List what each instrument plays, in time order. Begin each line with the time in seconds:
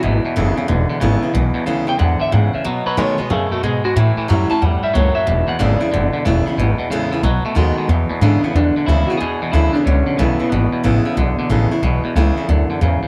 0.03 upright bass G#1, steel-string acoustic guitar E2, clean electric guitar E2 B2 E4
0.25 clean electric guitar E2 B2, muted upright bass stroke
0.36 upright bass F#1, clean electric guitar E2 C#3, steel-string acoustic guitar D3 G#3 B3 E4
0.57 clean electric guitar E2 C#3, steel-string acoustic guitar B3 E4, muted upright bass stroke
0.68 upright bass E1, clean electric guitar E2 D3, steel-string acoustic guitar B2
0.89 clean electric guitar E2 D3, muted upright bass stroke
1.00 upright bass G#1, clean electric guitar E2 C#3, steel-string acoustic guitar D3 G#3 B3 E4
1.22 clean electric guitar E2 C#3, steel-string acoustic guitar B3 E4
1.33 upright bass B1, clean electric guitar E2 B2, steel-string acoustic guitar E2
1.54 clean electric guitar E2 B2, muted upright bass stroke
1.66 upright bass D2, clean electric guitar E2 C#3, steel-string acoustic guitar D3 G#3 B3 E4
1.87 clean electric guitar E2 C#3 G5, steel-string acoustic guitar B3 E4
1.98 clean electric guitar E2 D3 F#5, upright bass E2, steel-string acoustic guitar G#2
2.19 clean electric guitar E2 D3 E5, muted upright bass stroke
2.32 clean electric guitar E2 C#3 F#5, upright bass G#2, steel-string acoustic guitar A2
2.54 clean electric guitar E2 C#3 E5, muted upright bass stroke
2.64 steel-string acoustic guitar B2, upright bass B2, clean electric guitar B2 F#3 C#5
2.86 clean electric guitar B2 F#3 B4, muted upright bass stroke
2.97 clean electric guitar B2 G#3 C#5, steel-string acoustic guitar D#3 A3 B3 F#4, upright bass D#3
3.18 clean electric guitar B2 G#3 B4, steel-string acoustic guitar B3 F#4, muted upright bass stroke
3.30 steel-string acoustic guitar F#2, clean electric guitar B2 A3 G#4, upright bass C#3
3.51 clean electric guitar B2 A3 F#4, muted upright bass stroke
3.63 steel-string acoustic guitar G#2, upright bass B2, clean electric guitar B2 G#3 G#4
3.84 clean electric guitar B2 G#3 F#4, muted upright bass stroke
3.96 upright bass A2, clean electric guitar A2 E3 E4, steel-string acoustic guitar A2
4.17 clean electric guitar A2 E3, muted upright bass stroke
4.28 upright bass F#2, clean electric guitar A2 F#3, steel-string acoustic guitar E3 G3 C#4 E4
4.50 clean electric guitar A2 F#3 A5, steel-string acoustic guitar C#4 E4, muted upright bass stroke
4.61 upright bass E2, steel-string acoustic guitar G2, clean electric guitar A2 G3 F#5
4.83 clean electric guitar A2 G3 E5, muted upright bass stroke
4.93 upright bass C#2, steel-string acoustic guitar F#2, clean electric guitar A2 F#3 C#5
5.15 clean electric guitar A2 F#3 E5, muted upright bass stroke
5.26 upright bass E1, clean electric guitar E2 B2, steel-string acoustic guitar E2
5.47 clean electric guitar E2 B2 F#5, muted upright bass stroke
5.59 upright bass G#1, clean electric guitar E2 C#3 D5, steel-string acoustic guitar D3 G#3 B3 E4
5.80 clean electric guitar E2 C#3, steel-string acoustic guitar B3 E4, muted upright bass stroke
5.92 upright bass F#1, clean electric guitar E2 D3, steel-string acoustic guitar B2
6.13 clean electric guitar E2 D3, muted upright bass stroke
6.25 upright bass E1, clean electric guitar E2 C#3, steel-string acoustic guitar D3 G#3 B3 E4
6.46 clean electric guitar E2 C#3, steel-string acoustic guitar B3 E4, muted upright bass stroke
6.57 upright bass G#1, clean electric guitar E2 B2, steel-string acoustic guitar E2
6.79 clean electric guitar E2 B2, muted upright bass stroke
6.90 upright bass A1, clean electric guitar E2 C#3, steel-string acoustic guitar D3 G#3 B3 E4
7.11 clean electric guitar E2 C#3, steel-string acoustic guitar B3 E4, muted upright bass stroke
7.23 upright bass B1, steel-string acoustic guitar B2, clean electric guitar B2 F#3
7.44 clean electric guitar B2 A3, muted upright bass stroke
7.55 upright bass D#2, clean electric guitar B2 G#3, steel-string acoustic guitar D#3 A3 B3 F#4
7.77 clean electric guitar B2 G#3, muted upright bass stroke
7.88 upright bass E2, clean electric guitar E2 B2, steel-string acoustic guitar E2
8.10 clean electric guitar E2 B2, muted upright bass stroke
8.21 clean electric guitar E2 C#3 D4, upright bass G#2, steel-string acoustic guitar D3 G#3 B3 E4
8.43 clean electric guitar E2 C#3 B3, steel-string acoustic guitar B3 E4, muted upright bass stroke
8.54 upright bass E2, clean electric guitar E2 D3 D4, steel-string acoustic guitar B2
8.76 clean electric guitar E2 D3, muted upright bass stroke
8.86 upright bass D2, clean electric guitar E2 C#3 E4, steel-string acoustic guitar D3 G#3 B3 E4
9.06 clean electric guitar E2 C#3 F#4, steel-string acoustic guitar E4
9.12 steel-string acoustic guitar B3
9.17 steel-string acoustic guitar E2, upright bass E2, clean electric guitar E2 B2 G#4
9.41 clean electric guitar E2 B2, muted upright bass stroke
9.52 upright bass D2, clean electric guitar E2 C#3 E4, steel-string acoustic guitar D3 G#3 B3 E4
9.73 clean electric guitar E2 C#3 D4, steel-string acoustic guitar B3 E4, muted upright bass stroke
9.84 upright bass C#2, clean electric guitar E2 D3 C#4, steel-string acoustic guitar B2
10.06 clean electric guitar E2 D3, muted upright bass stroke
10.17 upright bass B1, clean electric guitar E2 C#3 B3, steel-string acoustic guitar D3 G#3 B3 E4
10.39 clean electric guitar E2 C#3, steel-string acoustic guitar B3 E4, muted upright bass stroke
10.50 upright bass G#1, clean electric guitar E2 B2 B3, steel-string acoustic guitar E2
10.72 clean electric guitar E2 B2, muted upright bass stroke
10.84 upright bass A1, clean electric guitar E2 C#3, steel-string acoustic guitar D3 G#3 B3 E4
11.05 clean electric guitar E2 C#3, steel-string acoustic guitar B3 E4
11.17 upright bass B1, clean electric guitar E2 D3, steel-string acoustic guitar B2
11.38 clean electric guitar E2 D3, muted upright bass stroke
11.49 upright bass A1, clean electric guitar E2 C#3, steel-string acoustic guitar D3 G#3 B3 E4
11.71 clean electric guitar E2 C#3, steel-string acoustic guitar B3 E4, muted upright bass stroke
11.82 upright bass B1, clean electric guitar E2 B2, steel-string acoustic guitar E2
12.04 clean electric guitar E2 B2, muted upright bass stroke
12.15 upright bass C#2, clean electric guitar E2 C#3, steel-string acoustic guitar D3 G#3 B3 E4
12.37 clean electric guitar E2 C#3, steel-string acoustic guitar B3 E4
12.48 upright bass D2, clean electric guitar E2 D3, steel-string acoustic guitar F#2
12.69 clean electric guitar E2 D3, muted upright bass stroke
12.81 upright bass E2, clean electric guitar E2 C#3, steel-string acoustic guitar G#2
13.02 clean electric guitar E2 C#3, muted upright bass stroke